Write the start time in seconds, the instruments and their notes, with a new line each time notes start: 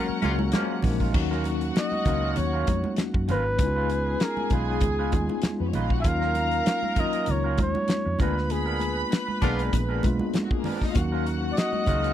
Already playing: tine electric piano F#3 G#3 A#3 C#4 F#4, string section C#4 A#4 F#5, flugelhorn A#4
0.09 muted fingered electric bass stroke
0.21 fingered electric bass C#2, tine electric piano F#3 G#3 A#3 C#4 F#4, clean electric guitar G#3 C#4 F4 C#5, horn section A#3 C#4 F4, closed hi-hat, muted conga, high conga
0.39 muted clean electric guitar stroke, high conga
0.52 horn section F3 A#3 C#4, clean electric guitar G#3 C#4 F4 A#4, snare, closed hi-hat, muted conga, high conga
0.82 fingered electric bass A#1, tine electric piano F3 G#3 A#3 C#4 D#4, muted clean electric guitar stroke, kick, open hi-hat, low conga
1.00 clean electric guitar G#3 C#4 F4 A#4, kick
1.13 fingered electric bass D#2, tine electric piano F#3 A#3 C#4 D#4 F#4, string section F#4 F#5, kick, crash, muted conga
1.31 clean electric guitar F#3 C#4 F4 A#4, snare
1.44 muted clean electric guitar stroke, closed hi-hat, muted conga
1.61 muted clean electric guitar stroke, closed hi-hat
1.75 flugelhorn D#5, muted clean electric guitar stroke, snare, closed hi-hat, muted conga
1.92 muted clean electric guitar stroke, high conga
2.05 fingered electric bass C#2, clean electric guitar F#3 C#4 F4 A#4, tine electric piano F#3 A#3 C#4 D#4 F#4, kick, closed hi-hat, low conga
2.22 clean electric guitar F#3 C#4 F4 A#4
2.33 flugelhorn D#5, muted clean electric guitar stroke, closed hi-hat
2.37 fingered electric bass D#2, flugelhorn C#5, low conga
2.53 clean electric guitar F#3 C#4 F4 A#4
2.67 fingered electric bass F2, muted clean electric guitar stroke, kick, closed hi-hat, high conga
2.84 muted clean electric guitar stroke, high conga
2.96 snare, closed hi-hat, high conga
3.14 fingered electric bass F#2, muted clean electric guitar stroke, kick
3.28 fingered electric bass G#1, clean electric guitar F#3 C#4 F4 A#4, flugelhorn B4, closed hi-hat, muted conga, low conga
3.45 muted clean electric guitar stroke
3.58 fingered electric bass C#2, tine electric piano G#3 B3 C#4 D#4 E4, string section G#4 G#5, muted clean electric guitar stroke, kick, closed hi-hat
3.67 tine electric piano F4
3.75 clean electric guitar G#3 C#4 F4 B4
3.89 muted clean electric guitar stroke, closed hi-hat
4.06 muted clean electric guitar stroke
4.20 flugelhorn A#4, muted clean electric guitar stroke, snare, closed hi-hat
4.37 muted clean electric guitar stroke, high conga
4.50 fingered electric bass B1, tine electric piano G#3 B3 C#4 D#4 F4, clean electric guitar G#3 C#4 F4 B4, flugelhorn G#4, kick, closed hi-hat, low conga
4.68 clean electric guitar G#3 C#4 F4 B4
4.81 fingered electric bass C#2, muted clean electric guitar stroke, kick, closed hi-hat, muted conga, low conga
4.99 clean electric guitar G#3 C#4 F4 B4
5.11 fingered electric bass D#2, tine electric piano G#3 B3 C#4 D#4 F4, muted clean electric guitar stroke, kick, closed hi-hat, muted conga, high conga
5.29 muted clean electric guitar stroke, high conga
5.42 muted clean electric guitar stroke, snare, closed hi-hat, high conga
5.59 fingered electric bass F2, string section B3 B4
5.68 string section C#4 C#5
5.73 fingered electric bass A#1, clean electric guitar G#3 C#4 F4 B4, string section D#4 D#5, closed hi-hat, muted conga, low conga
5.84 string section F4 F5
5.90 string section F#4 F#5, muted clean electric guitar stroke, kick
6.00 tine electric piano F#3 A#3, string section G#4 G#5, flugelhorn E5
6.04 fingered electric bass D#2, tine electric piano C#4 D#4 F4, string section A#4 A#5, flugelhorn F5, muted clean electric guitar stroke, kick, closed hi-hat
6.21 clean electric guitar F#3 C#4 F4 A#4, snare
6.35 muted clean electric guitar stroke, closed hi-hat, muted conga
6.51 muted clean electric guitar stroke, closed hi-hat
6.66 muted clean electric guitar stroke, snare, closed hi-hat, muted conga
6.83 muted clean electric guitar stroke, high conga
6.96 tine electric piano F#3 A#3 C#4 D#4 F4, clean electric guitar F#3 C#4 F4 A#4, flugelhorn D#5, kick, closed hi-hat, muted conga, low conga
7.13 clean electric guitar F#3 C#4 F4 A#4, closed hi-hat
7.26 fingered electric bass C#2, muted clean electric guitar stroke, closed hi-hat, low conga
7.31 flugelhorn C#5
7.44 clean electric guitar F#3 C#4 F4 A#4
7.58 fingered electric bass D#2, flugelhorn C#5, muted clean electric guitar stroke, kick, closed hi-hat, high conga
7.75 muted clean electric guitar stroke, high conga
7.88 snare, closed hi-hat, high conga
8.06 fingered electric bass F2, muted clean electric guitar stroke
8.18 fingered electric bass D2, tine electric piano G#3 A#3 B3 D4 F4, clean electric guitar B3 D4 G#4 A#4, string section B4 B5, flugelhorn B4, kick, closed hi-hat, low conga
8.36 muted clean electric guitar stroke, snare
8.50 flugelhorn G#4, muted clean electric guitar stroke, closed hi-hat, muted conga
8.66 clean electric guitar B3 D4 G#4 A#4
8.80 muted clean electric guitar stroke, closed hi-hat, muted conga
8.97 muted clean electric guitar stroke
9.11 muted clean electric guitar stroke, snare, closed hi-hat
9.27 muted clean electric guitar stroke, high conga
9.41 fingered electric bass B1, tine electric piano G#3 A#3 B3 D4 G#4, clean electric guitar B3 D4 G#4 A#4, horn section B3 D4 F4, kick, closed hi-hat, muted conga, low conga
9.57 clean electric guitar B3 D4 G#4 A#4, closed hi-hat
9.72 fingered electric bass A#1, muted clean electric guitar stroke, kick, closed hi-hat, muted conga, low conga
9.89 clean electric guitar B3 D4 G#4 A#4
10.03 fingered electric bass B1, tine electric piano G#3 A#3 B3 D4 F4, muted clean electric guitar stroke, kick, closed hi-hat, high conga
10.19 muted clean electric guitar stroke, high conga
10.34 muted clean electric guitar stroke, snare, closed hi-hat, muted conga, high conga
10.44 string section F#3 F#4
10.51 string section G#3 G#4, kick
10.59 string section A#3 A#4
10.64 clean electric guitar B3 D4 G#4 A#4, string section B3 B4, open hi-hat, low conga
10.75 string section D4 D5
10.82 string section D#4 D#5, muted clean electric guitar stroke, kick, snare
10.91 tine electric piano F#3, string section F4 F5
10.95 fingered electric bass D#2, tine electric piano A#3 C#4 D#4 F#4, string section F#4 F#5, muted clean electric guitar stroke, kick, closed hi-hat, muted conga
11.12 clean electric guitar F#3 C#4 F4 A#4
11.26 muted clean electric guitar stroke, closed hi-hat
11.42 muted clean electric guitar stroke
11.52 flugelhorn D5
11.56 flugelhorn D#5, muted clean electric guitar stroke, snare, closed hi-hat
11.72 muted clean electric guitar stroke, high conga
11.86 fingered electric bass C#2, tine electric piano F#3 A#3 C#4 D#4 G#4, clean electric guitar F#3 C#4 F4 A#4, kick, closed hi-hat, low conga
12.03 clean electric guitar F#3 C#4 F4 A#4, closed hi-hat